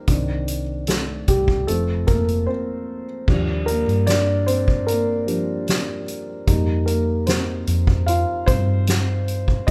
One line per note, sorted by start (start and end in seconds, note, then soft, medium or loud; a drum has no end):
0.08 1.24 C2 medium
0.08 0.61 D#3 soft
0.08 0.61 C4 soft
0.08 0.62 D4 soft
0.08 kick medium
0.08 closed hi-hat medium
0.48 closed hi-hat medium
0.87 1.26 A3 soft
0.87 1.29 A4 medium
0.87 snare loud
0.87 closed hi-hat medium
1.28 1.65 C2 medium
1.28 1.38 G3 medium
1.28 1.37 G4 medium
1.28 kick medium
1.28 closed hi-hat medium
1.48 kick medium
1.67 2.05 F1 medium
1.67 2.21 F3 soft
1.67 2.06 A3 medium
1.67 2.21 C4 medium
1.67 2.09 A4 medium
1.67 closed hi-hat medium
2.07 2.46 F1 medium
2.07 2.45 A#3 medium
2.07 2.49 A#4 medium
2.07 kick medium
2.07 closed hi-hat medium
2.28 closed hi-hat soft
2.47 3.04 C4 medium
2.47 3.03 C5 medium
3.28 3.84 D#2 medium
3.28 3.81 F3 soft
3.28 3.82 G3 soft
3.28 3.82 D4 soft
3.28 kick medium
3.28 crash medium
3.66 4.05 A#3 medium
3.66 4.08 A#4 medium
3.66 closed hi-hat medium
3.88 6.44 G2 medium
3.88 closed hi-hat soft
4.07 4.45 D4 medium
4.07 4.48 D5 medium
4.07 snare medium
4.07 closed hi-hat medium
4.46 4.85 C4 medium
4.46 4.88 C5 medium
4.46 closed hi-hat medium
4.68 kick medium
4.87 6.04 A#3 soft
4.87 6.03 A#4 medium
4.87 closed hi-hat medium
5.27 5.63 F3 soft
5.27 5.63 G3 soft
5.27 5.64 D4 soft
5.27 closed hi-hat medium
5.68 snare loud
5.68 closed hi-hat medium
6.08 closed hi-hat medium
6.47 7.64 F2 medium
6.47 9.63 G3 soft
6.47 6.87 A#3 soft
6.47 9.64 D#4 medium
6.47 kick medium
6.47 closed hi-hat medium
6.86 6.97 A#3 medium
6.86 6.95 A#4 medium
6.86 closed hi-hat medium
7.27 8.04 C4 medium
7.27 8.03 C5 medium
7.27 snare loud
7.27 closed hi-hat medium
7.67 8.24 F2 medium
7.67 closed hi-hat medium
7.87 kick medium
8.06 8.45 F4 medium
8.06 8.48 F5 medium
8.06 closed hi-hat medium
8.46 9.64 G2 medium
8.46 9.64 C4 medium
8.46 9.71 C5 medium
8.46 kick medium
8.46 closed hi-hat medium
8.87 snare loud
8.87 closed hi-hat medium
9.28 closed hi-hat medium
9.48 kick medium
9.67 9.71 F#3 soft
9.67 9.71 D#5 medium
9.67 kick medium